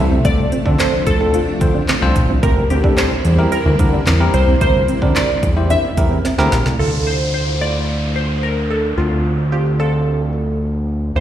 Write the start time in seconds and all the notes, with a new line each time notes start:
Already playing: C2 C3 E3 F3 A3 E5
0.11 C4
0.25 D2 F3 C4 D4 F4 A4 D5, kick, closed hi-hat
0.38 muted clean electric guitar stroke
0.52 C4, closed hi-hat
0.66 D3 C4 D4 F4 A4, kick
0.79 C4 C5, snare, clap, closed hi-hat
1.07 D2 A4, muted clean electric guitar stroke, kick, closed hi-hat
1.20 C4 D4 F4 A4
1.34 F4, closed hi-hat
1.48 muted clean electric guitar stroke
1.61 D2 C4 D4 F4 C5, kick, closed hi-hat
1.75 D4
1.88 C4, snare, clap, closed hi-hat
2.02 C2 C4 D4 F4 C5
2.16 A#1, muted clean electric guitar stroke, kick, closed hi-hat
2.29 C2 C4
2.43 D2 C3 G3 A#3 C4 E4 G4 A#4, kick, closed hi-hat
2.57 muted clean electric guitar stroke
2.70 D2 C4 G4, closed hi-hat
2.84 C4 D4 E4 G4 A4, kick
2.97 C4 C5, snare, clap, closed hi-hat
3.25 E2, muted clean electric guitar stroke, closed hi-hat
3.38 C4 E4 G4 A#4
3.52 E4 A#4, closed hi-hat
3.66 D2, muted clean electric guitar stroke
3.79 D3 C4 E4 G4 A#4, kick, closed hi-hat
3.93 D4
4.06 E2 C4, snare, clap, closed hi-hat
4.20 C4 E4 G4 A#4
4.34 C2 C5, muted clean electric guitar stroke, closed hi-hat
4.48 C4
4.61 D2 C4 E4 G4 A#4 C5, kick, closed hi-hat
4.75 muted clean electric guitar stroke
4.88 C4, closed hi-hat
5.02 D3 C4 D4 E4 G4 A#4, kick
5.16 C4 D5, snare, clap, closed hi-hat
5.43 E2, muted clean electric guitar stroke, kick, closed hi-hat
5.56 C4 E4 G4 C5
5.70 D4 E5, closed hi-hat
5.84 muted clean electric guitar stroke
5.97 E2 C4 E4 G4 A#4, kick, closed hi-hat
6.11 C4
6.25 C4, snare, closed hi-hat
6.38 D2 C4 E4 G4 A#4, snare
6.52 A#1, muted clean electric guitar stroke, snare, closed hi-hat
6.66 C2 A3, snare
6.79 D2 A3 E4 F4 A4, downlifter
7.07 C5
7.34 C5
7.47 E4 F4
7.61 A3 E4 F4 D5
8.16 C5
8.43 A#4
8.70 A4
8.97 D2 C4 D4 F4
9.52 C4 D4 F4 G4
9.79 C4 D4 F4 A4
11.16 D2 A#3 C4 E4 C5